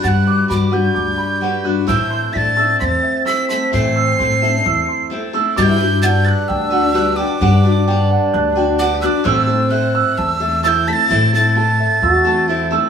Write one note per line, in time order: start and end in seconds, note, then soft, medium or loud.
0.00 1.64 G2 medium
0.00 0.40 G2 medium
0.00 0.70 G3 medium
0.00 0.47 G3 medium
0.00 0.48 D4 medium
0.00 0.27 F#4 medium
0.00 0.48 F#4 medium
0.00 0.50 B4 medium
0.00 0.96 F#5 medium
0.00 0.48 B5 medium
0.00 0.50 F#6 medium
0.00 0.09 A6 medium
0.08 0.46 F#6 medium
0.27 1.17 F#4 medium
0.27 0.93 D6 medium
0.48 0.86 G2 medium
0.48 0.72 G3 soft
0.48 0.72 D4 soft
0.48 0.71 F#4 medium
0.48 0.70 B4 soft
0.48 1.16 B5 medium
0.48 0.75 D6 medium
0.71 1.87 G3 medium
0.71 1.41 D4 soft
0.71 1.65 F#4 medium
0.71 1.42 F#4 soft
0.71 1.41 B4 soft
0.71 1.65 G6 medium
0.95 1.14 D2 medium
0.95 1.85 D4 medium
0.95 1.88 D6 medium
1.18 1.85 F#4 soft
1.18 1.88 B5 medium
1.41 1.65 G3 medium
1.41 1.65 D4 medium
1.41 1.64 F#4 medium
1.41 1.63 B4 medium
1.41 1.88 F#5 medium
1.64 1.88 G2 medium
1.64 1.87 D4 soft
1.64 1.88 F#4 soft
1.64 1.88 B4 medium
1.64 1.88 F#6 medium
1.86 2.34 A2 medium
1.86 2.25 A2 medium
1.86 2.34 E3 medium
1.86 2.33 A3 medium
1.86 2.33 C4 medium
1.86 2.30 E4 medium
1.86 2.34 E4 medium
1.86 2.34 A4 medium
1.86 2.55 E6 medium
1.86 2.35 G6 medium
2.11 2.78 C6 medium
2.33 2.71 A2 medium
2.33 2.57 A3 soft
2.33 2.57 C4 medium
2.33 2.82 D4 medium
2.33 2.56 E4 medium
2.33 2.55 A4 medium
2.33 3.02 E5 medium
2.33 2.79 A6 medium
2.33 2.38 B6 medium
2.57 3.24 A3 soft
2.57 3.25 C4 soft
2.57 3.26 E4 soft
2.57 3.26 A4 soft
2.57 3.24 E6 medium
2.80 2.99 E2 medium
2.80 4.67 C4 medium
2.80 3.47 C6 medium
2.80 2.85 B6 medium
2.84 3.23 A6 medium
3.03 3.71 E5 medium
3.25 3.49 A3 soft
3.25 3.49 C4 medium
3.25 3.49 E4 medium
3.25 3.48 A4 medium
3.25 3.95 E6 medium
3.25 3.48 B6 medium
3.49 3.72 A3 soft
3.49 3.72 C4 soft
3.49 3.72 E4 soft
3.49 3.73 A4 soft
3.49 4.18 C6 medium
3.49 3.71 B6 loud
3.72 4.18 A2 medium
3.72 4.09 A2 loud
3.72 4.19 E3 medium
3.72 4.18 A3 medium
3.72 4.19 C4 medium
3.72 4.19 E4 medium
3.72 4.20 A4 medium
3.72 4.41 E5 medium
3.72 5.08 C7 loud
3.96 4.64 E6 medium
4.19 4.56 A2 medium
4.19 4.42 A3 medium
4.19 4.43 C4 medium
4.19 4.42 E4 medium
4.19 4.41 A4 medium
4.19 4.87 C6 medium
4.42 5.09 A3 soft
4.42 5.10 C4 soft
4.42 5.11 E4 medium
4.42 5.11 A4 medium
4.42 5.10 E5 medium
4.65 4.84 E2 medium
4.65 5.34 E4 medium
4.65 5.33 E6 medium
4.88 5.57 C6 medium
5.10 5.34 A3 medium
5.10 5.34 C4 medium
5.10 5.33 E4 medium
5.10 5.32 A4 medium
5.10 5.58 E5 medium
5.33 5.57 A3 soft
5.33 5.57 C4 medium
5.33 5.57 E4 soft
5.33 5.57 A4 medium
5.33 5.57 E6 medium
5.56 6.30 G2 loud
5.56 5.80 G3 medium
5.56 5.80 D4 medium
5.56 6.06 E4 loud
5.56 5.79 F#4 medium
5.56 5.77 B4 medium
5.56 6.49 D6 medium
5.56 5.63 A6 loud
5.62 6.00 G6 loud
5.79 6.01 D4 soft
5.79 6.02 F#4 soft
5.79 6.03 B4 medium
6.02 6.72 G3 medium
6.02 6.72 D4 medium
6.02 7.40 D4 loud
6.02 6.70 F#4 medium
6.02 6.69 B4 medium
6.02 6.71 F#5 medium
6.02 6.07 A6 medium
6.06 6.26 G6 loud
6.25 6.94 F#6 medium
6.25 6.30 A6 medium
6.29 6.50 F#6 medium
6.48 7.22 D2 loud
6.48 7.17 G5 medium
6.48 7.18 E6 loud
6.70 6.93 D4 soft
6.70 6.93 F#4 soft
6.70 6.94 B4 soft
6.70 7.41 F#5 medium
6.93 7.17 G3 medium
6.93 7.18 D4 medium
6.93 7.17 F#4 medium
6.93 7.16 B4 medium
6.93 7.88 F#6 medium
7.16 7.40 D4 soft
7.16 7.41 F#4 soft
7.16 7.41 B4 medium
7.16 7.86 G5 medium
7.16 8.10 D6 medium
7.40 8.14 G2 medium
7.40 7.64 G3 medium
7.40 9.28 D4 loud
7.40 7.65 D4 medium
7.40 7.63 F#4 medium
7.40 7.62 B4 medium
7.40 8.09 F#5 medium
7.63 7.87 D4 soft
7.63 7.88 F#4 soft
7.63 7.87 B4 medium
7.87 8.57 G3 medium
7.87 8.57 D4 medium
7.87 8.54 B4 medium
7.87 8.55 G5 medium
8.11 8.78 F#5 medium
8.34 9.06 D2 loud
8.34 9.01 F#6 medium
8.56 8.78 D4 soft
8.56 8.79 F#4 medium
8.56 8.79 B4 medium
8.56 9.26 G5 medium
8.78 9.02 G3 medium
8.78 9.03 D4 medium
8.78 9.02 F#4 medium
8.78 9.00 B4 medium
8.78 9.26 F#5 medium
8.78 9.01 D6 medium
9.01 9.24 D4 soft
9.01 9.25 F#4 soft
9.01 9.25 B4 medium
9.01 9.07 E6 medium
9.01 9.26 F#6 medium
9.06 9.27 D6 medium
9.24 9.48 A2 medium
9.24 9.98 A2 loud
9.24 9.48 E3 medium
9.24 9.48 A3 medium
9.24 9.48 C4 medium
9.24 10.38 C4 medium
9.24 9.47 E4 medium
9.24 9.46 A4 medium
9.24 9.93 E6 loud
9.24 9.30 F#6 medium
9.29 9.72 E6 loud
9.47 9.68 A3 soft
9.47 9.69 C4 soft
9.47 9.70 E4 soft
9.47 9.70 A4 medium
9.69 10.42 A3 medium
9.69 10.40 C4 medium
9.69 10.40 E4 medium
9.69 10.40 A4 medium
9.69 10.40 E5 medium
9.69 10.19 F#6 medium
9.95 10.62 E6 medium
10.18 10.91 E2 loud
10.18 10.86 A5 medium
10.18 10.63 E6 loud
10.40 10.62 A3 soft
10.40 10.63 C4 soft
10.40 10.63 E4 soft
10.40 10.64 A4 medium
10.40 11.09 E5 medium
10.63 10.87 A3 medium
10.63 10.87 C4 medium
10.63 10.87 E4 medium
10.63 11.08 E4 loud
10.63 10.86 A4 medium
10.63 11.56 E6 loud
10.63 10.69 A6 loud
10.68 10.89 G6 loud
10.87 11.09 A3 soft
10.87 11.09 C4 medium
10.87 11.10 E4 medium
10.87 11.10 A4 medium
10.87 11.55 A5 medium
10.87 10.94 B6 loud
10.93 11.34 A6 loud
11.10 11.33 A2 medium
11.10 11.83 A2 loud
11.10 11.33 E3 medium
11.10 11.34 A3 medium
11.10 11.34 C4 medium
11.10 11.59 E4 loud
11.10 11.33 E4 medium
11.10 11.32 A4 medium
11.10 11.79 E5 medium
11.33 11.54 A3 soft
11.33 11.55 C4 soft
11.33 11.56 E4 medium
11.33 11.56 A4 medium
11.33 12.68 A6 loud
11.55 12.26 A3 medium
11.55 12.25 C4 medium
11.55 12.25 E4 medium
11.55 12.02 A4 loud
11.55 12.24 A4 medium
11.55 12.25 A5 medium
11.80 12.48 E5 medium
12.02 12.75 E2 medium
12.02 12.50 F#4 loud
12.02 12.71 E6 medium
12.24 12.47 A3 soft
12.24 12.48 C4 medium
12.24 12.49 E4 medium
12.24 12.48 A4 medium
12.24 12.89 A5 medium
12.48 12.71 A3 medium
12.48 12.71 C4 medium
12.48 12.89 E4 medium
12.48 12.71 E4 medium
12.48 12.69 A4 medium
12.48 12.89 E5 medium
12.71 12.89 A3 soft
12.71 12.89 C4 medium
12.71 12.89 E4 medium
12.71 12.89 A4 medium
12.71 12.89 E6 medium